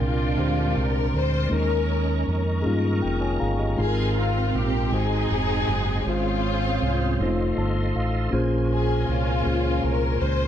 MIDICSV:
0, 0, Header, 1, 5, 480
1, 0, Start_track
1, 0, Key_signature, -4, "major"
1, 0, Tempo, 755668
1, 964, Time_signature, 6, 3, 24, 8
1, 6654, End_track
2, 0, Start_track
2, 0, Title_t, "Tonewheel organ"
2, 0, Program_c, 0, 16
2, 0, Note_on_c, 0, 70, 47
2, 0, Note_on_c, 0, 74, 46
2, 0, Note_on_c, 0, 79, 43
2, 0, Note_on_c, 0, 84, 51
2, 938, Note_off_c, 0, 84, 0
2, 951, Note_off_c, 0, 74, 0
2, 951, Note_off_c, 0, 79, 0
2, 972, Note_on_c, 0, 75, 41
2, 977, Note_on_c, 0, 82, 43
2, 978, Note_on_c, 0, 85, 55
2, 2394, Note_off_c, 0, 75, 0
2, 2397, Note_off_c, 0, 85, 0
2, 2401, Note_on_c, 0, 77, 43
2, 2401, Note_on_c, 0, 84, 49
2, 3100, Note_off_c, 0, 70, 0
2, 3110, Note_off_c, 0, 82, 0
2, 3116, Note_off_c, 0, 77, 0
2, 3129, Note_on_c, 0, 78, 44
2, 3130, Note_on_c, 0, 75, 44
2, 3135, Note_on_c, 0, 68, 50
2, 3841, Note_off_c, 0, 75, 0
2, 3841, Note_off_c, 0, 78, 0
2, 3846, Note_on_c, 0, 77, 45
2, 3850, Note_on_c, 0, 72, 46
2, 4543, Note_off_c, 0, 84, 0
2, 4557, Note_off_c, 0, 68, 0
2, 4561, Note_off_c, 0, 72, 0
2, 4576, Note_on_c, 0, 84, 52
2, 4578, Note_on_c, 0, 75, 49
2, 4579, Note_on_c, 0, 69, 53
2, 5272, Note_off_c, 0, 77, 0
2, 5284, Note_on_c, 0, 70, 52
2, 5285, Note_off_c, 0, 75, 0
2, 5286, Note_off_c, 0, 69, 0
2, 5288, Note_on_c, 0, 61, 47
2, 5289, Note_on_c, 0, 80, 48
2, 6654, Note_off_c, 0, 61, 0
2, 6654, Note_off_c, 0, 70, 0
2, 6654, Note_off_c, 0, 80, 0
2, 6654, Note_off_c, 0, 84, 0
2, 6654, End_track
3, 0, Start_track
3, 0, Title_t, "String section"
3, 0, Program_c, 1, 48
3, 9, Note_on_c, 1, 56, 53
3, 13, Note_on_c, 1, 62, 55
3, 18, Note_on_c, 1, 65, 65
3, 491, Note_off_c, 1, 65, 0
3, 510, Note_on_c, 1, 70, 72
3, 701, Note_off_c, 1, 56, 0
3, 703, Note_off_c, 1, 62, 0
3, 737, Note_off_c, 1, 70, 0
3, 747, Note_on_c, 1, 72, 78
3, 976, Note_off_c, 1, 72, 0
3, 984, Note_on_c, 1, 61, 57
3, 991, Note_on_c, 1, 70, 76
3, 1492, Note_off_c, 1, 70, 0
3, 1669, Note_off_c, 1, 61, 0
3, 2419, Note_on_c, 1, 65, 63
3, 2420, Note_on_c, 1, 68, 84
3, 2422, Note_on_c, 1, 60, 65
3, 2636, Note_off_c, 1, 68, 0
3, 2660, Note_off_c, 1, 65, 0
3, 2667, Note_on_c, 1, 65, 75
3, 2896, Note_off_c, 1, 65, 0
3, 2903, Note_on_c, 1, 67, 75
3, 3108, Note_off_c, 1, 60, 0
3, 3134, Note_off_c, 1, 67, 0
3, 3146, Note_on_c, 1, 63, 61
3, 3150, Note_on_c, 1, 60, 57
3, 3150, Note_on_c, 1, 68, 84
3, 3831, Note_off_c, 1, 63, 0
3, 3833, Note_off_c, 1, 60, 0
3, 3858, Note_off_c, 1, 68, 0
3, 3863, Note_on_c, 1, 60, 50
3, 3864, Note_on_c, 1, 61, 55
3, 3872, Note_on_c, 1, 65, 79
3, 4790, Note_off_c, 1, 60, 0
3, 4790, Note_off_c, 1, 61, 0
3, 4820, Note_off_c, 1, 65, 0
3, 5537, Note_on_c, 1, 68, 66
3, 5756, Note_off_c, 1, 68, 0
3, 5776, Note_on_c, 1, 65, 74
3, 5779, Note_on_c, 1, 56, 50
3, 5784, Note_on_c, 1, 61, 57
3, 6252, Note_off_c, 1, 65, 0
3, 6252, Note_on_c, 1, 70, 79
3, 6468, Note_off_c, 1, 56, 0
3, 6470, Note_off_c, 1, 61, 0
3, 6490, Note_off_c, 1, 70, 0
3, 6498, Note_on_c, 1, 72, 81
3, 6654, Note_off_c, 1, 72, 0
3, 6654, End_track
4, 0, Start_track
4, 0, Title_t, "Tine electric piano"
4, 0, Program_c, 2, 4
4, 0, Control_c, 2, 64, 127
4, 0, Note_on_c, 2, 46, 57
4, 0, Note_on_c, 2, 56, 73
4, 0, Note_on_c, 2, 60, 71
4, 0, Note_on_c, 2, 62, 71
4, 0, Note_on_c, 2, 70, 82
4, 0, Note_on_c, 2, 79, 69
4, 194, Note_off_c, 2, 56, 0
4, 198, Note_off_c, 2, 60, 0
4, 202, Note_off_c, 2, 79, 0
4, 207, Note_off_c, 2, 70, 0
4, 216, Note_off_c, 2, 46, 0
4, 221, Note_off_c, 2, 62, 0
4, 228, Note_on_c, 2, 56, 53
4, 233, Note_on_c, 2, 60, 45
4, 239, Note_on_c, 2, 62, 45
4, 247, Note_on_c, 2, 67, 47
4, 250, Note_on_c, 2, 72, 53
4, 914, Note_off_c, 2, 56, 0
4, 917, Note_off_c, 2, 60, 0
4, 920, Note_off_c, 2, 62, 0
4, 924, Note_off_c, 2, 67, 0
4, 926, Note_off_c, 2, 72, 0
4, 947, Note_on_c, 2, 56, 63
4, 951, Note_on_c, 2, 58, 57
4, 954, Note_on_c, 2, 51, 49
4, 958, Note_on_c, 2, 61, 54
4, 961, Note_on_c, 2, 63, 53
4, 969, Note_on_c, 2, 70, 68
4, 972, Control_c, 2, 64, 0
4, 1063, Control_c, 2, 64, 127
4, 1634, Note_off_c, 2, 56, 0
4, 1636, Note_off_c, 2, 58, 0
4, 1640, Note_off_c, 2, 61, 0
4, 1641, Note_off_c, 2, 63, 0
4, 1645, Note_off_c, 2, 70, 0
4, 1654, Note_off_c, 2, 51, 0
4, 1665, Note_on_c, 2, 68, 62
4, 1673, Note_on_c, 2, 58, 53
4, 1678, Note_on_c, 2, 61, 59
4, 1684, Note_on_c, 2, 63, 56
4, 1689, Note_on_c, 2, 65, 68
4, 1920, Note_on_c, 2, 79, 53
4, 1927, Note_off_c, 2, 65, 0
4, 2034, Note_off_c, 2, 79, 0
4, 2038, Note_on_c, 2, 73, 45
4, 2040, Note_on_c, 2, 65, 40
4, 2040, Note_on_c, 2, 80, 49
4, 2154, Note_off_c, 2, 80, 0
4, 2155, Note_off_c, 2, 73, 0
4, 2156, Note_off_c, 2, 65, 0
4, 2157, Note_off_c, 2, 68, 0
4, 2159, Note_on_c, 2, 82, 51
4, 2161, Note_on_c, 2, 77, 53
4, 2165, Note_on_c, 2, 68, 42
4, 2277, Note_off_c, 2, 77, 0
4, 2279, Note_off_c, 2, 68, 0
4, 2280, Note_on_c, 2, 75, 47
4, 2283, Note_on_c, 2, 67, 42
4, 2357, Note_off_c, 2, 58, 0
4, 2360, Note_off_c, 2, 61, 0
4, 2363, Note_off_c, 2, 63, 0
4, 2385, Note_off_c, 2, 82, 0
4, 2390, Note_on_c, 2, 56, 63
4, 2397, Note_on_c, 2, 60, 54
4, 2402, Note_on_c, 2, 44, 47
4, 2402, Note_on_c, 2, 63, 53
4, 2407, Note_on_c, 2, 65, 54
4, 2412, Note_on_c, 2, 68, 55
4, 2414, Control_c, 2, 64, 0
4, 2450, Note_off_c, 2, 68, 0
4, 2458, Note_on_c, 2, 70, 66
4, 2510, Note_off_c, 2, 75, 0
4, 2512, Note_off_c, 2, 67, 0
4, 2513, Control_c, 2, 64, 127
4, 3076, Note_off_c, 2, 56, 0
4, 3080, Note_off_c, 2, 60, 0
4, 3082, Note_off_c, 2, 63, 0
4, 3085, Note_off_c, 2, 65, 0
4, 3099, Note_off_c, 2, 44, 0
4, 3110, Note_off_c, 2, 70, 0
4, 3116, Note_on_c, 2, 56, 53
4, 3120, Note_on_c, 2, 60, 47
4, 3126, Note_on_c, 2, 63, 48
4, 3128, Note_on_c, 2, 44, 49
4, 3133, Control_c, 2, 64, 0
4, 3135, Note_on_c, 2, 66, 47
4, 3136, Note_on_c, 2, 72, 54
4, 3248, Control_c, 2, 64, 127
4, 3800, Note_off_c, 2, 56, 0
4, 3802, Note_off_c, 2, 60, 0
4, 3805, Note_off_c, 2, 63, 0
4, 3809, Note_off_c, 2, 66, 0
4, 3810, Note_off_c, 2, 72, 0
4, 3822, Note_off_c, 2, 44, 0
4, 3842, Note_on_c, 2, 56, 60
4, 3852, Control_c, 2, 64, 0
4, 3853, Note_on_c, 2, 44, 51
4, 3859, Note_on_c, 2, 65, 57
4, 3868, Note_on_c, 2, 72, 73
4, 3963, Control_c, 2, 64, 127
4, 4523, Note_off_c, 2, 56, 0
4, 4532, Note_off_c, 2, 65, 0
4, 4536, Note_off_c, 2, 72, 0
4, 4545, Note_off_c, 2, 44, 0
4, 4567, Note_on_c, 2, 56, 50
4, 4575, Control_c, 2, 64, 0
4, 4579, Note_on_c, 2, 63, 58
4, 4584, Note_on_c, 2, 65, 53
4, 4592, Note_on_c, 2, 72, 71
4, 4608, Note_off_c, 2, 56, 0
4, 4608, Note_on_c, 2, 57, 58
4, 4670, Control_c, 2, 64, 127
4, 4816, Note_on_c, 2, 81, 54
4, 5035, Note_off_c, 2, 81, 0
4, 5057, Note_on_c, 2, 77, 52
4, 5251, Note_off_c, 2, 63, 0
4, 5254, Note_off_c, 2, 65, 0
4, 5258, Note_off_c, 2, 72, 0
4, 5266, Note_off_c, 2, 57, 0
4, 5275, Note_off_c, 2, 77, 0
4, 5277, Note_on_c, 2, 58, 76
4, 5282, Note_on_c, 2, 61, 68
4, 5291, Note_on_c, 2, 46, 60
4, 5291, Note_on_c, 2, 65, 72
4, 5293, Note_on_c, 2, 68, 70
4, 5295, Control_c, 2, 64, 0
4, 5299, Note_on_c, 2, 72, 86
4, 5411, Control_c, 2, 64, 127
4, 5961, Note_off_c, 2, 58, 0
4, 5963, Note_off_c, 2, 61, 0
4, 5967, Note_off_c, 2, 65, 0
4, 5969, Note_off_c, 2, 68, 0
4, 5972, Note_off_c, 2, 72, 0
4, 5984, Note_off_c, 2, 46, 0
4, 5994, Note_on_c, 2, 58, 53
4, 5997, Note_on_c, 2, 61, 52
4, 6007, Note_on_c, 2, 65, 50
4, 6009, Note_on_c, 2, 68, 46
4, 6017, Note_on_c, 2, 72, 56
4, 6654, Note_off_c, 2, 58, 0
4, 6654, Note_off_c, 2, 61, 0
4, 6654, Note_off_c, 2, 65, 0
4, 6654, Note_off_c, 2, 68, 0
4, 6654, Note_off_c, 2, 72, 0
4, 6654, End_track
5, 0, Start_track
5, 0, Title_t, "Fingered electric bass"
5, 0, Program_c, 3, 33
5, 3, Note_on_c, 3, 36, 62
5, 224, Note_off_c, 3, 36, 0
5, 241, Note_on_c, 3, 38, 65
5, 463, Note_off_c, 3, 38, 0
5, 486, Note_on_c, 3, 36, 66
5, 706, Note_off_c, 3, 36, 0
5, 723, Note_on_c, 3, 38, 67
5, 945, Note_off_c, 3, 38, 0
5, 963, Note_on_c, 3, 39, 68
5, 1418, Note_off_c, 3, 39, 0
5, 1448, Note_on_c, 3, 41, 62
5, 1667, Note_off_c, 3, 41, 0
5, 1689, Note_on_c, 3, 43, 67
5, 1908, Note_off_c, 3, 43, 0
5, 1930, Note_on_c, 3, 29, 67
5, 2148, Note_off_c, 3, 29, 0
5, 2168, Note_on_c, 3, 31, 65
5, 2387, Note_off_c, 3, 31, 0
5, 2406, Note_on_c, 3, 32, 72
5, 2860, Note_off_c, 3, 32, 0
5, 2888, Note_on_c, 3, 34, 64
5, 3108, Note_off_c, 3, 34, 0
5, 3125, Note_on_c, 3, 32, 68
5, 3346, Note_off_c, 3, 32, 0
5, 3368, Note_on_c, 3, 29, 67
5, 3588, Note_off_c, 3, 29, 0
5, 3607, Note_on_c, 3, 30, 66
5, 3828, Note_off_c, 3, 30, 0
5, 3850, Note_on_c, 3, 32, 81
5, 4303, Note_off_c, 3, 32, 0
5, 4332, Note_on_c, 3, 36, 65
5, 4550, Note_off_c, 3, 36, 0
5, 4571, Note_on_c, 3, 29, 80
5, 4790, Note_off_c, 3, 29, 0
5, 4808, Note_on_c, 3, 31, 70
5, 5028, Note_off_c, 3, 31, 0
5, 5050, Note_on_c, 3, 33, 65
5, 5269, Note_off_c, 3, 33, 0
5, 5288, Note_on_c, 3, 34, 79
5, 5743, Note_off_c, 3, 34, 0
5, 5773, Note_on_c, 3, 36, 62
5, 5991, Note_off_c, 3, 36, 0
5, 6010, Note_on_c, 3, 37, 72
5, 6229, Note_off_c, 3, 37, 0
5, 6250, Note_on_c, 3, 36, 72
5, 6470, Note_off_c, 3, 36, 0
5, 6489, Note_on_c, 3, 37, 72
5, 6654, Note_off_c, 3, 37, 0
5, 6654, End_track
0, 0, End_of_file